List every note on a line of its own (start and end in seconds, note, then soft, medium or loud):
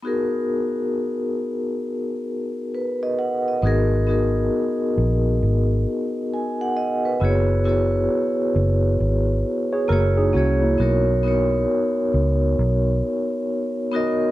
0.03 1.68 B3 medium
0.03 1.69 D#4 medium
0.03 1.70 F#4 medium
0.03 1.70 G#4 medium
0.07 1.71 A#4 medium
2.75 3.01 B4 medium
3.03 3.18 D#5 medium
3.19 3.45 F#5 medium
3.48 3.90 D#5 medium
3.62 4.48 G#1 loud
3.62 4.04 B3 medium
3.62 4.04 D#4 medium
3.62 4.05 F#4 medium
3.62 4.05 G#4 medium
3.67 4.06 A#4 medium
4.07 5.72 B3 medium
4.07 5.73 D#4 medium
4.07 5.73 F#4 medium
4.07 5.74 G#4 medium
4.11 5.74 A#4 medium
4.97 5.40 A#1 loud
5.42 5.84 G#1 medium
6.33 6.59 G#5 medium
6.61 6.76 F#5 medium
6.76 7.03 D#5 medium
7.05 7.47 B4 medium
7.20 8.07 F#1 loud
7.20 7.62 B3 medium
7.20 7.62 E4 medium
7.20 7.63 F#4 medium
7.20 7.63 G#4 medium
7.25 7.64 C#5 medium
7.64 9.30 B3 medium
7.64 9.30 E4 medium
7.64 9.31 F#4 medium
7.64 9.32 G#4 medium
7.69 9.32 C#5 medium
8.56 8.98 F#1 loud
9.00 9.43 G#1 medium
9.73 9.89 G#4 medium
9.73 9.88 C#5 medium
9.88 10.32 F#1 loud
9.88 10.30 A#3 medium
9.88 10.31 E4 medium
9.88 10.17 E4 medium
9.88 10.31 F#4 medium
9.88 10.32 G#4 medium
9.88 10.16 A#4 medium
9.93 10.32 C#5 medium
10.17 10.33 D#4 medium
10.17 10.33 G#4 medium
10.33 10.77 C2 medium
10.33 10.75 A#3 medium
10.33 10.61 C#4 medium
10.33 10.75 E4 medium
10.33 10.61 F#4 medium
10.33 10.76 F#4 medium
10.33 10.77 G#4 medium
10.38 10.77 C#5 loud
10.62 11.05 A#3 medium
10.62 11.05 E4 medium
10.78 11.65 B1 loud
10.78 11.20 B3 medium
10.78 11.20 D#4 medium
10.78 11.21 F#4 medium
10.78 11.21 A#4 medium
10.82 11.22 C#5 medium
11.23 12.88 B3 medium
11.23 12.89 D#4 medium
11.23 12.90 F#4 medium
11.23 12.90 A#4 medium
11.28 12.91 C#5 medium
12.14 12.56 C#2 medium
12.59 13.01 B1 medium
13.92 14.31 B3 medium
13.92 14.31 D#4 medium
13.92 14.31 F#4 medium
13.92 14.31 A#4 medium
13.96 14.31 D#5 medium